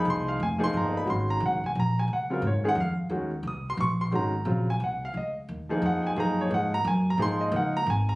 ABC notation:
X:1
M:3/4
L:1/8
Q:"Swing" 1/4=177
K:Fdor
V:1 name="Grand piano"
c' f a c' b _c' | [K:Abmix] c' b g a b a | g B [cd] g f z | z2 e' c' d' c' |
b3 a g f | e z3 g [=ga] | b d g b a b | c' e g b a b |]
V:2 name="Grand piano"
[F,B,EA]2 z [F,B,EA]3 | [K:Abmix] [E,A,DG]3 z3 | z [D,G,CF] z [E,A,DA] z2 | [E,A,DG] z4 z |
[E,A,DG] z [D,G,CF] z3 | z3 [F,B,EA]3 | [F,B,EA]2 [F,B,EA] z3 | [F,B,EA]2 [F,B,EB] z3 |]
V:3 name="Upright bass" clef=bass
C,,2 F,,,2 G,,,2 | [K:Abmix] A,,,2 (3C,, A,,, G,,, B,,,2 | D,,2 A,,2 F,,2 | E,,2 C,,2 B,,,2 |
A,,,2 B,,,2 C,,2 | D,,2 E,,2 F,,2 | G,,2 A,,2 G,,2 | A,,2 D,,2 A,,,2 |]